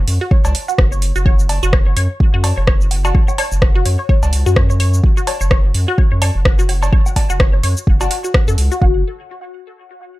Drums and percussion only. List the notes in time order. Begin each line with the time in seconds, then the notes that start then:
0.08 open hi-hat
0.31 kick
0.45 cowbell, shaker
0.55 open hi-hat
0.68 shaker
0.78 kick, cross-stick
0.92 shaker
1.02 open hi-hat
1.16 shaker
1.26 kick
1.39 shaker
1.49 open hi-hat, cowbell
1.63 shaker
1.73 kick, cross-stick
1.97 open hi-hat
2.20 kick
2.44 open hi-hat, cowbell
2.67 kick, cross-stick
2.81 shaker
2.91 open hi-hat, low woodblock
3.05 cowbell, shaker
3.15 kick
3.28 low woodblock, shaker
3.38 open hi-hat, cowbell
3.52 shaker
3.62 kick, cross-stick
3.85 open hi-hat
4.09 kick
4.23 cowbell, shaker
4.33 open hi-hat
4.46 shaker
4.56 kick, cross-stick
4.70 shaker
4.80 open hi-hat
4.94 shaker
5.04 kick
5.17 shaker
5.27 open hi-hat, cowbell
5.41 shaker
5.51 kick, cross-stick
5.74 open hi-hat
5.98 kick
6.22 open hi-hat, cowbell
6.45 kick, cross-stick
6.59 shaker
6.69 open hi-hat, low woodblock
6.83 cowbell, shaker
6.93 kick
7.06 low woodblock, shaker
7.16 kick, open hi-hat, cowbell, low woodblock
7.30 shaker
7.40 kick, cross-stick
7.63 open hi-hat
7.77 shaker
7.87 kick
8.01 cowbell, shaker
8.11 open hi-hat
8.24 shaker
8.34 kick, cross-stick
8.48 shaker
8.58 open hi-hat
8.72 shaker
8.82 kick